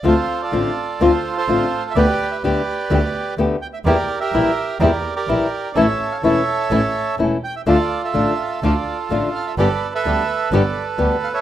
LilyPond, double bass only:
\new Staff \with { instrumentName = "Double bass" } { \clef bass \time 4/4 \key d \minor \tempo 4 = 126 d,8 r8 a,,8 r8 d,8 r8 a,,8 r8 | d,8 r8 d,8 r8 d,8 r8 d,8 r8 | e,8 r8 bes,,8 r8 e,8 r8 bes,,8 r8 | a,,8 r8 e,,8 r8 a,,8 r8 e,,8 r8 |
d,8 r8 a,,8 r8 d,8 r8 a,,8 r8 | g,,8 r8 d,8 r8 g,,8 r8 d,8 r8 | }